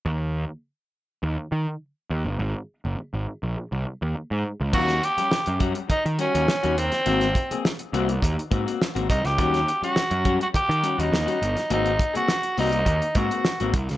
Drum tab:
CC |----------------|----------------|x---------------|----------------|
HH |----------------|----------------|-xxx-xxxxxxx-xxx|xxxx-xxxxxxx-xxx|
SD |----------------|----------------|-o--o-------o--o|-o--o-------o--o|
BD |----------------|----------------|o-----o-o-------|--o-----o-o---o-|

CC |----------------|----------------|
HH |xxxx-xxxxxxx-xxx|xxxx-xoxxxxx-xxx|
SD |-o--o-------o--o|----o-------o--o|
BD |o-----o-o-------|--o-----o-o---o-|